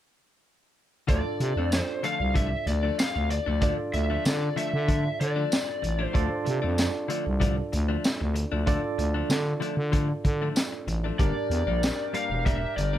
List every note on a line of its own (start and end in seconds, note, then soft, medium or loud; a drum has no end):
1.07 1.22 D2 medium
1.07 1.25 D3 medium
1.07 1.25 F3 medium
1.07 1.25 A3 medium
1.07 3.57 D4 medium
1.07 1.24 D4 medium
1.07 3.58 F4 medium
1.07 3.58 A4 medium
1.07 1.78 D5 medium
1.07 3.58 D5 medium
1.07 kick loud
1.07 closed hi-hat medium
1.25 muted clean electric guitar stroke soft
1.40 1.53 C3 medium
1.40 muted clean electric guitar stroke soft
1.40 closed hi-hat medium
1.56 1.81 F2 medium
1.56 1.72 F3 soft
1.56 1.72 A3 soft
1.56 1.72 D4 soft
1.72 muted clean electric guitar stroke soft
1.72 snare loud
1.72 closed hi-hat medium
1.72 tambourine loud
1.78 2.05 C5 medium
2.03 2.20 D3 medium
2.03 2.20 F3 medium
2.03 2.19 A3 medium
2.03 2.19 D4 medium
2.03 2.34 F5 medium
2.03 closed hi-hat medium
2.20 2.55 C2 medium
2.20 muted clean electric guitar stroke soft
2.34 2.52 D3 medium
2.34 2.51 F3 medium
2.34 2.51 A3 medium
2.34 2.50 D4 medium
2.34 2.67 E5 medium
2.34 kick medium
2.34 closed hi-hat medium
2.52 muted clean electric guitar stroke soft
2.67 2.91 D2 loud
2.67 2.97 D5 medium
2.67 muted clean electric guitar stroke soft
2.67 closed hi-hat medium
2.83 3.02 F3 soft
2.83 3.02 A3 soft
2.83 3.02 D4 soft
2.99 3.31 F5 medium
2.99 snare loud
2.99 closed hi-hat medium
2.99 tambourine loud
3.15 3.40 D2 medium
3.15 muted clean electric guitar stroke soft
3.29 3.61 D5 medium
3.29 muted clean electric guitar stroke soft
3.29 closed hi-hat medium
3.46 3.71 D2 medium
3.46 3.61 F3 soft
3.46 3.61 A3 soft
3.46 3.61 D4 soft
3.61 3.78 D3 medium
3.61 3.78 F3 medium
3.61 3.77 A3 medium
3.61 6.10 D4 medium
3.61 3.77 D4 medium
3.61 6.11 F4 medium
3.61 6.11 A4 medium
3.61 3.71 D5 medium
3.61 6.11 D5 medium
3.61 kick loud
3.61 closed hi-hat medium
3.78 muted clean electric guitar stroke soft
3.93 4.18 D2 medium
3.93 4.23 E5 medium
3.93 muted clean electric guitar stroke soft
3.93 closed hi-hat medium
4.10 4.24 F3 soft
4.10 4.25 A3 soft
4.10 4.25 D4 soft
4.25 4.49 D3 loud
4.25 4.57 D5 medium
4.25 muted clean electric guitar stroke soft
4.25 snare medium
4.25 closed hi-hat medium
4.25 tambourine loud
4.56 4.73 D3 medium
4.56 4.74 F3 medium
4.56 4.73 A3 medium
4.56 4.73 D4 medium
4.56 5.21 E5 medium
4.56 closed hi-hat medium
4.74 5.09 D3 medium
4.74 muted clean electric guitar stroke soft
4.88 5.05 D3 medium
4.88 5.05 F3 medium
4.88 5.05 A3 medium
4.88 5.04 D4 medium
4.88 kick medium
4.88 closed hi-hat medium
5.05 muted clean electric guitar stroke soft
5.20 5.44 D3 medium
5.20 6.04 D5 medium
5.20 muted clean electric guitar stroke soft
5.20 closed hi-hat medium
5.36 5.55 F3 soft
5.36 5.55 A3 soft
5.36 5.54 D4 medium
5.52 snare loud
5.52 closed hi-hat medium
5.52 tambourine loud
5.68 muted clean electric guitar stroke soft
5.82 6.07 A1 medium
5.82 muted clean electric guitar stroke soft
5.82 closed hi-hat medium
5.99 6.12 F3 soft
5.99 6.13 A3 medium
5.99 6.13 D4 medium
6.04 6.43 C5 medium
6.13 6.28 D2 medium
6.13 6.31 D3 medium
6.13 6.30 F3 medium
6.13 6.29 A3 medium
6.13 8.63 D4 medium
6.13 6.29 D4 medium
6.13 8.63 F4 medium
6.13 8.64 A4 medium
6.13 8.64 D5 medium
6.13 kick loud
6.13 closed hi-hat medium
6.30 muted clean electric guitar stroke soft
6.45 6.60 C3 medium
6.45 muted clean electric guitar stroke soft
6.45 closed hi-hat medium
6.62 6.88 F2 medium
6.62 6.76 F3 soft
6.62 6.77 A3 medium
6.62 6.77 D4 medium
6.77 muted clean electric guitar stroke soft
6.77 snare loud
6.77 closed hi-hat medium
6.77 tambourine loud
7.08 7.26 D3 medium
7.08 7.26 F3 medium
7.08 7.25 A3 medium
7.08 7.25 D4 medium
7.08 closed hi-hat medium
7.26 7.62 C2 medium
7.26 muted clean electric guitar stroke soft
7.40 7.57 D3 medium
7.40 7.57 F3 medium
7.40 7.56 A3 medium
7.40 7.56 D4 loud
7.40 kick medium
7.40 closed hi-hat medium
7.57 muted clean electric guitar stroke soft
7.73 7.97 D2 loud
7.73 muted clean electric guitar stroke soft
7.73 closed hi-hat medium
7.88 8.08 F3 medium
7.88 8.08 A3 medium
7.88 8.07 D4 medium
8.04 snare loud
8.04 closed hi-hat medium
8.04 tambourine loud
8.21 8.45 D2 medium
8.21 muted clean electric guitar stroke soft
8.34 muted clean electric guitar stroke soft
8.34 closed hi-hat medium
8.52 8.77 D2 medium
8.52 8.66 F3 soft
8.52 8.66 A3 soft
8.52 8.67 D4 medium
8.66 8.84 D3 medium
8.66 8.83 F3 medium
8.66 8.83 A3 medium
8.66 11.16 D4 medium
8.66 8.82 D4 loud
8.66 11.16 F4 medium
8.66 11.16 A4 medium
8.66 11.16 D5 medium
8.66 kick loud
8.66 closed hi-hat medium
8.83 muted clean electric guitar stroke soft
8.98 9.23 D2 medium
8.98 muted clean electric guitar stroke soft
8.98 closed hi-hat medium
9.14 9.29 F3 soft
9.14 9.29 A3 medium
9.14 9.29 D4 medium
9.29 9.54 D3 medium
9.29 muted clean electric guitar stroke soft
9.29 snare loud
9.29 closed hi-hat medium
9.29 tambourine medium
9.60 9.78 D3 medium
9.60 9.77 F3 medium
9.60 9.77 A3 medium
9.60 9.76 D4 medium
9.60 closed hi-hat medium
9.77 10.13 D3 medium
9.77 muted clean electric guitar stroke soft
9.92 10.10 D3 medium
9.92 10.09 F3 medium
9.92 10.08 A3 medium
9.92 10.08 D4 medium
9.92 kick medium
9.92 closed hi-hat medium
10.09 muted clean electric guitar stroke soft
10.25 10.49 D3 loud
10.25 muted clean electric guitar stroke soft
10.25 kick medium
10.25 closed hi-hat medium
10.42 10.61 F3 soft
10.42 10.60 A3 soft
10.42 10.60 D4 medium
10.56 snare loud
10.56 closed hi-hat medium
10.56 tambourine loud
10.72 muted clean electric guitar stroke soft
10.87 11.12 A1 medium
10.87 muted clean electric guitar stroke soft
10.87 closed hi-hat medium
11.04 11.19 F3 soft
11.04 11.19 A3 soft
11.04 11.19 D4 soft
11.19 11.32 G1 medium
11.19 11.36 G2 medium
11.19 11.36 G3 medium
11.19 11.36 A#3 medium
11.19 12.98 D4 medium
11.19 11.36 D4 medium
11.19 12.98 D4 medium
11.19 12.98 G4 medium
11.19 12.98 A#4 medium
11.19 12.14 D5 medium
11.19 12.98 D5 medium
11.19 kick loud
11.19 closed hi-hat medium
11.37 muted clean electric guitar stroke soft
11.50 11.63 E2 medium
11.50 muted clean electric guitar stroke soft
11.50 closed hi-hat medium
11.67 11.91 A#1 medium
11.67 11.82 G3 soft
11.67 11.82 A#3 soft
11.67 11.82 D4 soft
11.83 muted clean electric guitar stroke soft
11.83 snare loud
11.83 closed hi-hat medium
11.83 tambourine loud
12.13 12.31 G2 medium
12.13 12.30 G3 medium
12.13 12.30 A#3 medium
12.13 12.29 D4 medium
12.13 12.45 F5 loud
12.13 closed hi-hat medium
12.30 12.66 E1 medium
12.45 12.63 G2 medium
12.45 12.62 G3 medium
12.45 12.61 A#3 medium
12.45 12.61 D4 medium
12.45 12.76 E5 medium
12.45 kick medium
12.45 closed hi-hat medium
12.62 muted clean electric guitar stroke soft
12.77 12.98 G1 loud
12.77 12.98 D5 medium
12.77 muted clean electric guitar stroke soft
12.77 closed hi-hat medium
12.93 12.98 G3 soft
12.93 12.98 A#3 soft
12.93 12.98 D4 medium